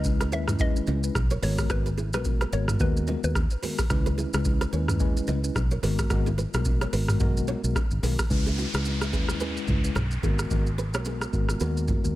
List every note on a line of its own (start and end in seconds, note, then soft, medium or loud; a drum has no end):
0.00 0.32 C#2 medium
0.00 0.29 G#3 medium
0.00 0.29 C#4 medium
0.00 0.30 E4 medium
0.00 0.30 B4 medium
0.04 kick loud
0.04 high bongo medium
0.04 shaker medium
0.21 0.29 G#4 medium
0.21 0.28 B4 medium
0.21 cross-stick medium
0.21 shaker medium
0.32 0.76 D#2 medium
0.32 0.58 G#3 medium
0.32 0.58 C#4 medium
0.32 0.58 E4 medium
0.32 0.43 A#4 medium
0.32 0.58 B4 medium
0.32 0.43 C#5 medium
0.32 0.46 E5 medium
0.32 shaker medium
0.48 cross-stick medium
0.48 mid tom medium
0.48 low bongo medium
0.48 shaker medium
0.59 0.99 G#3 loud
0.59 0.99 C#4 medium
0.59 0.99 E4 medium
0.59 1.00 B4 loud
0.59 1.01 D#5 loud
0.59 kick loud
0.59 low conga medium
0.59 shaker medium
0.76 high bongo medium
0.76 shaker medium
0.87 1.09 C#2 medium
0.87 0.99 B4 medium
0.87 0.98 D#5 medium
0.87 high bongo medium
0.87 low bongo medium
0.87 shaker soft
1.03 1.18 G#3 medium
1.03 1.18 C#4 medium
1.03 1.18 E4 medium
1.03 1.18 B4 medium
1.03 shaker medium
1.15 1.37 B1 loud
1.15 kick loud
1.15 cross-stick loud
1.15 high bongo medium
1.15 shaker medium
1.30 1.39 A#4 medium
1.30 1.39 C#5 medium
1.30 shaker soft
1.42 1.64 G#1 loud
1.42 1.68 G#3 loud
1.42 1.68 B3 medium
1.42 1.68 F#4 medium
1.42 1.54 G#4 medium
1.42 1.68 A#4 loud
1.42 1.53 B4 medium
1.42 1.56 C#5 medium
1.42 open hi-hat medium
1.42 low conga medium
1.42 shaker medium
1.58 kick medium
1.58 cross-stick loud
1.58 shaker loud
1.70 2.14 G#1 loud
1.70 1.88 G#3 medium
1.70 1.88 B3 medium
1.70 1.88 F#4 medium
1.70 1.88 A#4 loud
1.70 1.94 B4 loud
1.70 kick loud
1.70 cross-stick loud
1.70 low conga medium
1.70 shaker medium
1.86 1.94 G#4 medium
1.86 1.94 B4 medium
1.86 shaker soft
1.97 2.09 E4 medium
1.97 2.08 G#4 medium
1.97 low bongo medium
1.97 shaker medium
2.13 2.44 B1 loud
2.13 2.50 G#3 medium
2.13 2.50 B3 medium
2.13 2.50 F#4 medium
2.13 2.50 A#4 medium
2.13 2.24 B4 medium
2.13 cross-stick loud
2.13 low bongo medium
2.13 shaker medium
2.24 kick loud
2.24 high bongo medium
2.24 shaker medium
2.41 2.49 G#4 medium
2.41 2.49 B4 medium
2.41 cross-stick medium
2.41 shaker medium
2.52 2.74 G#1 loud
2.52 2.78 G#3 medium
2.52 2.78 B3 medium
2.52 2.78 F#4 medium
2.52 2.78 A#4 medium
2.52 2.64 A#4 medium
2.52 2.63 C#5 loud
2.52 2.66 C#5 medium
2.52 shaker medium
2.68 cross-stick medium
2.68 mid tom medium
2.68 low bongo medium
2.68 shaker medium
2.79 3.14 D#2 loud
2.79 3.20 G#3 medium
2.79 3.20 B3 medium
2.79 3.20 F#4 medium
2.79 3.20 A#4 loud
2.79 2.94 B4 medium
2.79 kick loud
2.79 low conga medium
2.79 shaker medium
2.97 high bongo medium
2.97 shaker medium
3.07 3.19 B4 medium
3.07 3.18 D#5 medium
3.07 high bongo medium
3.07 low bongo medium
3.07 shaker soft
3.23 3.45 D#2 medium
3.23 3.38 G#3 medium
3.23 3.38 B3 medium
3.23 3.38 F#4 medium
3.23 3.38 A#4 medium
3.23 3.34 B4 medium
3.23 shaker medium
3.35 kick loud
3.35 cross-stick loud
3.35 high bongo medium
3.35 shaker medium
3.50 shaker soft
3.62 3.81 G#3 medium
3.62 3.81 B3 medium
3.62 3.81 F#4 medium
3.62 3.74 G#4 medium
3.62 3.81 A#4 medium
3.62 3.73 B4 medium
3.62 open hi-hat medium
3.62 low conga medium
3.62 shaker medium
3.78 kick medium
3.78 cross-stick loud
3.78 shaker loud
3.90 4.24 C#2 loud
3.90 4.30 G#3 loud
3.90 4.30 C#4 medium
3.90 4.30 E4 medium
3.90 4.30 B4 loud
3.90 kick loud
3.90 cross-stick loud
3.90 low conga medium
3.90 shaker medium
4.06 4.14 G#4 medium
4.06 4.14 B4 medium
4.06 shaker soft
4.18 4.29 E4 medium
4.18 4.28 G#4 medium
4.18 low bongo medium
4.18 shaker medium
4.33 4.64 C#2 medium
4.33 4.70 G#3 medium
4.33 4.70 C#4 medium
4.33 4.70 E4 medium
4.33 4.70 B4 medium
4.33 cross-stick loud
4.33 low bongo medium
4.33 shaker loud
4.45 kick loud
4.45 high bongo medium
4.45 shaker medium
4.61 4.69 G#4 medium
4.61 4.69 B4 medium
4.61 cross-stick medium
4.61 shaker medium
4.72 5.16 D#2 loud
4.72 4.98 G#3 medium
4.72 4.98 C#4 medium
4.72 4.98 E4 medium
4.72 4.84 A#4 medium
4.72 4.98 B4 medium
4.72 4.83 C#5 medium
4.72 shaker medium
4.88 cross-stick medium
4.88 mid tom medium
4.88 low bongo medium
4.88 shaker medium
5.00 5.40 G#3 loud
5.00 5.40 C#4 medium
5.00 5.40 E4 medium
5.00 5.40 B4 loud
5.00 kick loud
5.00 low conga medium
5.00 shaker medium
5.17 high bongo medium
5.17 shaker medium
5.27 5.49 C#2 medium
5.27 5.39 B4 medium
5.27 5.38 D#5 medium
5.27 high bongo medium
5.27 low bongo medium
5.27 shaker soft
5.43 5.58 G#3 medium
5.43 5.58 C#4 medium
5.43 5.58 E4 medium
5.43 5.58 B4 medium
5.43 shaker medium
5.55 5.77 B1 loud
5.55 kick loud
5.55 cross-stick loud
5.55 high bongo medium
5.55 shaker medium
5.71 5.79 A#4 medium
5.71 5.79 C#5 medium
5.71 shaker soft
5.82 6.04 G#1 loud
5.82 6.08 G#3 loud
5.82 6.08 B3 medium
5.82 6.08 F#4 medium
5.82 5.94 G#4 medium
5.82 6.09 A#4 loud
5.82 5.93 B4 medium
5.82 open hi-hat medium
5.82 low conga medium
5.82 shaker medium
5.99 kick medium
5.99 cross-stick loud
5.99 shaker loud
6.10 6.45 G#1 loud
6.10 6.28 G#3 loud
6.10 6.28 B3 medium
6.10 6.28 F#4 medium
6.10 6.29 A#4 loud
6.10 kick loud
6.10 cross-stick loud
6.10 low conga medium
6.10 shaker medium
6.26 6.35 E4 medium
6.26 6.34 G#4 medium
6.26 shaker soft
6.38 6.49 G#4 medium
6.38 6.48 B4 medium
6.38 low bongo medium
6.38 shaker medium
6.54 6.85 B1 medium
6.54 6.90 G#3 medium
6.54 6.90 B3 medium
6.54 6.90 F#4 medium
6.54 6.90 A#4 medium
6.54 cross-stick loud
6.54 low bongo medium
6.54 shaker medium
6.65 kick loud
6.65 high bongo medium
6.65 shaker medium
6.81 6.90 A#4 medium
6.81 6.89 C#5 medium
6.81 cross-stick medium
6.81 shaker medium
6.92 7.20 G#1 loud
6.92 7.18 G#3 medium
6.92 7.18 B3 medium
6.92 7.19 F#4 medium
6.92 7.04 G#4 medium
6.92 7.19 A#4 medium
6.92 7.03 B4 loud
6.92 open hi-hat medium
6.92 shaker medium
7.08 cross-stick medium
7.08 mid tom medium
7.08 low bongo medium
7.08 shaker medium
7.20 7.55 B1 loud
7.20 7.60 G#3 loud
7.20 7.60 B3 medium
7.20 7.60 F#4 medium
7.20 7.60 A#4 loud
7.20 kick loud
7.20 mid tom loud
7.20 low conga medium
7.20 shaker medium
7.37 high bongo medium
7.37 shaker medium
7.47 7.59 A#4 medium
7.47 7.59 C#5 medium
7.47 high bongo medium
7.47 low bongo medium
7.47 shaker medium
7.64 7.73 B1 medium
7.64 7.78 G#3 medium
7.64 7.78 B3 medium
7.64 7.78 F#4 medium
7.64 7.78 A#4 medium
7.64 shaker medium
7.75 kick loud
7.75 cross-stick loud
7.75 high bongo medium
7.75 shaker medium
7.91 8.00 G#1 medium
7.91 shaker soft
8.02 8.15 B1 loud
8.02 8.21 G#3 medium
8.02 8.21 B3 medium
8.02 8.21 F#4 medium
8.02 8.14 G#4 medium
8.02 8.21 A#4 medium
8.02 8.14 B4 medium
8.02 open hi-hat medium
8.02 low conga medium
8.02 shaker medium
8.19 kick medium
8.19 cross-stick loud
8.19 shaker loud
8.30 8.65 C#2 loud
8.30 8.70 G#3 medium
8.30 8.70 C#4 medium
8.30 8.70 E4 medium
8.30 8.70 B4 loud
8.30 kick loud
8.30 downlifter medium
8.30 low conga medium
8.30 shaker medium
8.46 8.55 E4 medium
8.46 8.54 G#4 medium
8.46 shaker soft
8.58 8.69 D#4 medium
8.58 8.69 F#4 medium
8.58 shaker medium
8.73 9.13 C#2 medium
8.73 9.10 G#3 medium
8.73 9.10 C#4 medium
8.73 9.10 E4 medium
8.73 9.10 B4 medium
8.73 cross-stick loud
8.73 shaker medium
8.85 high bongo medium
8.85 shaker medium
9.01 9.10 E4 medium
9.01 9.09 G#4 medium
9.01 cross-stick medium
9.01 shaker medium
9.12 9.56 D#2 medium
9.12 9.38 G#3 medium
9.12 9.38 C#4 medium
9.12 9.39 E4 medium
9.12 9.24 E4 medium
9.12 9.24 G#4 medium
9.12 9.39 B4 medium
9.12 kick medium
9.12 shaker medium
9.28 cross-stick medium
9.28 low bongo medium
9.28 shaker medium
9.40 9.80 G#3 medium
9.40 9.80 C#4 medium
9.40 9.80 E4 medium
9.40 9.59 G#4 medium
9.40 9.59 B4 medium
9.40 9.80 B4 loud
9.40 low conga medium
9.40 shaker medium
9.57 shaker medium
9.68 9.90 C#2 medium
9.68 kick medium
9.68 mid tom medium
9.68 low bongo medium
9.68 shaker soft
9.83 9.98 G#3 medium
9.83 9.98 C#4 medium
9.83 9.98 E4 medium
9.83 9.98 B4 medium
9.83 shaker medium
9.95 10.17 B1 medium
9.95 10.07 G#4 medium
9.95 10.06 C#5 medium
9.95 cross-stick medium
9.95 mid tom medium
9.95 high bongo medium
9.95 shaker medium
10.11 shaker soft
10.23 10.45 G#1 loud
10.23 10.49 G#3 medium
10.23 10.49 B3 medium
10.23 10.34 D#4 medium
10.23 10.49 F#4 medium
10.23 10.34 G#4 medium
10.23 10.49 A#4 loud
10.23 kick medium
10.23 low conga medium
10.23 shaker medium
10.39 cross-stick medium
10.39 shaker loud
10.50 10.94 G#1 loud
10.50 10.68 G#3 medium
10.50 10.69 B3 medium
10.50 10.69 F#4 medium
10.50 10.69 A#4 loud
10.50 kick loud
10.50 low conga medium
10.50 shaker medium
10.67 shaker soft
10.78 10.89 G#4 medium
10.78 10.89 B4 medium
10.78 shaker medium
10.94 11.25 B1 medium
10.94 11.30 G#3 medium
10.94 11.30 B3 medium
10.94 11.30 F#4 medium
10.94 11.30 A#4 medium
10.94 11.02 A#4 medium
10.94 11.02 C#5 medium
10.94 cross-stick loud
10.94 shaker medium
11.05 11.25 G#4 medium
11.05 11.24 B4 medium
11.05 high bongo medium
11.05 shaker medium
11.21 cross-stick medium
11.21 shaker medium
11.33 11.55 G#1 medium
11.33 11.59 G#3 medium
11.33 11.59 B3 medium
11.33 11.59 F#4 medium
11.33 11.59 A#4 medium
11.33 kick medium
11.33 shaker medium
11.49 cross-stick medium
11.49 low bongo medium
11.49 shaker medium
11.60 11.95 D#2 loud
11.60 12.00 G#3 medium
11.60 12.00 B3 medium
11.60 12.00 F#4 medium
11.60 11.80 G#4 medium
11.60 12.00 A#4 loud
11.60 11.79 B4 medium
11.60 low conga medium
11.60 shaker medium
11.77 shaker medium
11.88 kick medium
11.88 mid tom medium
11.88 low bongo medium
11.88 shaker soft
12.04 12.15 D#2 medium
12.04 12.15 G#3 medium
12.04 12.15 B3 medium
12.04 12.15 F#4 medium
12.04 12.15 A#4 medium
12.04 shaker medium